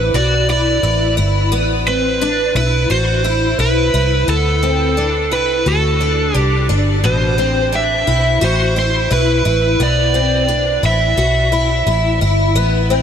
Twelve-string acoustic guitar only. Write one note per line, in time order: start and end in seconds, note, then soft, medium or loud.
0.00 0.14 E4 medium
0.14 0.49 F#4 medium
0.49 0.82 E4 medium
0.83 1.16 E4 medium
1.17 1.52 E4 medium
1.52 1.87 B3 medium
1.87 2.21 C4 medium
2.22 2.56 D4 medium
2.56 2.90 E4 medium
2.90 3.24 F#4 medium
3.24 3.58 E4 medium
3.59 3.93 E4 medium
3.94 4.28 E4 medium
4.28 4.62 B3 medium
4.63 4.97 C4 medium
4.97 5.32 D4 medium
5.32 5.66 E4 medium
5.66 6.01 F#4 medium
6.01 6.33 D4 medium
6.34 6.68 D4 medium
6.69 7.04 D4 medium
7.04 7.38 B2 medium
7.38 7.72 C4 medium
7.72 8.07 D4 medium
8.07 8.41 E4 medium
8.41 8.76 F#4 medium
8.76 9.09 E4 medium
9.11 9.44 E4 medium
9.45 9.80 E4 medium
9.80 10.14 B3 medium
10.14 10.48 C4 medium
10.48 10.83 D4 medium
10.83 11.17 E4 medium
11.17 11.52 F#4 medium
11.52 11.85 E4 medium
11.87 12.20 E4 medium
12.21 12.56 E4 medium
12.56 12.90 B3 medium
12.90 13.02 C4 medium